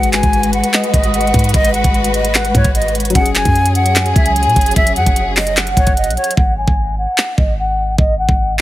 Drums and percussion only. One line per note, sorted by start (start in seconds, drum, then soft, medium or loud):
0.03 closed hi-hat medium
0.13 clap loud
0.13 closed hi-hat medium
0.23 kick loud
0.23 closed hi-hat medium
0.33 closed hi-hat soft
0.43 closed hi-hat medium
0.53 closed hi-hat medium
0.64 closed hi-hat medium
0.74 clap loud
0.74 closed hi-hat medium
0.84 closed hi-hat medium
0.94 kick loud
0.94 closed hi-hat medium
1.04 closed hi-hat medium
1.14 closed hi-hat medium
1.21 closed hi-hat medium
1.27 closed hi-hat soft
1.34 kick loud
1.34 closed hi-hat medium
1.39 closed hi-hat medium
1.44 closed hi-hat medium
1.49 closed hi-hat medium
1.54 kick loud
1.54 closed hi-hat medium
1.65 closed hi-hat medium
1.74 closed hi-hat medium
1.84 kick loud
1.84 closed hi-hat medium
1.94 closed hi-hat soft
2.04 closed hi-hat medium
2.14 closed hi-hat medium
2.25 closed hi-hat medium
2.35 clap loud
2.35 closed hi-hat medium
2.45 closed hi-hat medium
2.55 kick loud
2.55 closed hi-hat medium
2.64 kick loud
2.64 closed hi-hat medium
2.75 closed hi-hat medium
2.82 closed hi-hat medium
2.88 closed hi-hat soft
2.95 closed hi-hat medium
3.00 closed hi-hat medium
3.05 closed hi-hat medium
3.10 closed hi-hat medium
3.15 kick loud
3.15 closed hi-hat medium
3.26 closed hi-hat medium
3.35 clap loud
3.35 closed hi-hat medium
3.45 kick loud
3.45 closed hi-hat medium
3.55 closed hi-hat soft
3.66 closed hi-hat medium
3.75 closed hi-hat medium
3.86 closed hi-hat medium
3.96 clap loud
3.96 closed hi-hat medium
4.06 closed hi-hat medium
4.16 kick loud
4.16 closed hi-hat medium
4.26 closed hi-hat medium
4.36 closed hi-hat medium
4.43 closed hi-hat medium
4.49 closed hi-hat soft
4.56 kick loud
4.56 closed hi-hat medium
4.61 closed hi-hat medium
4.66 closed hi-hat medium
4.71 closed hi-hat medium
4.76 kick loud
4.76 closed hi-hat medium
4.87 closed hi-hat medium
4.96 closed hi-hat medium
5.06 kick loud
5.06 closed hi-hat medium
5.16 closed hi-hat medium
5.36 clap loud
5.36 open hi-hat medium
5.47 closed hi-hat medium
5.57 clap loud
5.57 closed hi-hat medium
5.67 closed hi-hat medium
5.77 kick loud
5.77 closed hi-hat medium
5.87 kick loud
5.87 closed hi-hat medium
5.97 closed hi-hat medium
6.04 closed hi-hat medium
6.10 closed hi-hat medium
6.17 closed hi-hat soft
6.24 closed hi-hat medium
6.31 closed hi-hat medium
6.37 kick loud
6.68 kick loud
7.18 clap loud
7.38 kick loud
7.98 kick loud
8.29 kick medium